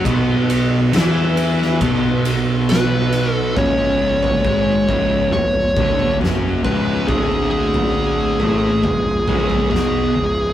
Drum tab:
RD |x-x-x-x-x-x-x-x-|----------------|----------------|
SD |----o--o----o---|------------o---|------------o---|
T2 |----------------|--------o---o---|--------o---o---|
FT |----------------|o--o--o-o-oo----|o--o--o-o-oo----|
BD |o-------o-------|o---o-o---o---o-|o-------o-------|